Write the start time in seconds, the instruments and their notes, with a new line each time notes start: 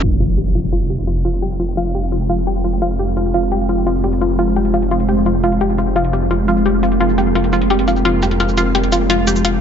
0.03 detuned saw bass F1, ambient pad G#3 C4 F4, synth arpeggio sound F4, closed hi-hat, impact
0.20 synth arpeggio sound F4, closed hi-hat
0.38 synth arpeggio sound G4, closed hi-hat
0.46 closed hi-hat
0.55 synth arpeggio sound F4, closed hi-hat, shaker
0.73 synth arpeggio sound F4, closed hi-hat
0.90 synth arpeggio sound G4, closed hi-hat, shaker
0.99 shaker
1.07 synth arpeggio sound F4, closed hi-hat
1.25 synth arpeggio sound F4, closed hi-hat, shaker
1.34 closed hi-hat
1.42 synth arpeggio sound G4, closed hi-hat
1.51 shaker
1.60 synth arpeggio sound F4, closed hi-hat, shaker
1.77 synth arpeggio sound F4, closed hi-hat
1.86 closed hi-hat
1.95 synth arpeggio sound G4, closed hi-hat, shaker
2.03 closed hi-hat
2.12 synth arpeggio sound F4, closed hi-hat
2.21 closed hi-hat
2.29 synth arpeggio sound F4, closed hi-hat, shaker
2.38 shaker
2.47 synth arpeggio sound G4, closed hi-hat
2.64 synth arpeggio sound F4, closed hi-hat, shaker
2.73 closed hi-hat
2.82 synth arpeggio sound F4, closed hi-hat
2.90 shaker
2.99 synth arpeggio sound G4, closed hi-hat, shaker
3.17 synth arpeggio sound F4, closed hi-hat
3.25 closed hi-hat
3.34 synth arpeggio sound F4, closed hi-hat, shaker
3.51 synth arpeggio sound G4, closed hi-hat
3.69 synth arpeggio sound F4, closed hi-hat, shaker
3.78 shaker
3.86 synth arpeggio sound F4, closed hi-hat
4.04 synth arpeggio sound G4, closed hi-hat, shaker
4.13 closed hi-hat
4.21 synth arpeggio sound F4, closed hi-hat
4.30 shaker
4.39 synth arpeggio sound F4, closed hi-hat, shaker
4.56 synth arpeggio sound G4, closed hi-hat
4.65 closed hi-hat
4.74 synth arpeggio sound F4, closed hi-hat, shaker
4.82 closed hi-hat
4.91 synth arpeggio sound F4, closed hi-hat
5.00 closed hi-hat
5.09 synth arpeggio sound G4, closed hi-hat, shaker
5.17 shaker
5.26 synth arpeggio sound F4, closed hi-hat
5.43 synth arpeggio sound F4, closed hi-hat, shaker
5.52 closed hi-hat
5.61 detuned saw bass F1, synth arpeggio sound G4, ambient pad A#4, closed hi-hat
5.70 shaker
5.78 synth arpeggio sound F4, closed hi-hat, shaker
5.96 synth arpeggio sound F4, closed hi-hat
6.04 closed hi-hat
6.13 synth arpeggio sound G4, closed hi-hat, shaker
6.31 synth arpeggio sound F4, closed hi-hat
6.48 synth arpeggio sound F4, closed hi-hat, shaker
6.57 shaker
6.66 synth arpeggio sound G4, closed hi-hat
6.83 synth arpeggio sound F4, closed hi-hat, shaker
6.92 closed hi-hat
7.00 synth arpeggio sound F4, closed hi-hat
7.09 shaker
7.18 synth arpeggio sound G4, closed hi-hat, shaker
7.35 synth arpeggio sound F4, closed hi-hat
7.44 closed hi-hat
7.53 synth arpeggio sound F4, closed hi-hat, shaker
7.62 closed hi-hat
7.70 synth arpeggio sound G4, closed hi-hat
7.79 closed hi-hat
7.88 synth arpeggio sound F4, closed hi-hat, shaker
7.96 shaker
8.05 synth arpeggio sound F4, closed hi-hat
8.22 synth arpeggio sound G4, closed hi-hat, shaker
8.31 closed hi-hat
8.40 synth arpeggio sound F4, closed hi-hat
8.49 shaker
8.57 synth arpeggio sound F4, closed hi-hat, shaker
8.75 synth arpeggio sound G4, closed hi-hat
8.84 closed hi-hat
8.92 synth arpeggio sound F4, closed hi-hat, shaker
9.10 synth arpeggio sound F4, closed hi-hat
9.27 synth arpeggio sound G4, closed hi-hat, shaker
9.36 shaker
9.45 synth arpeggio sound F4, closed hi-hat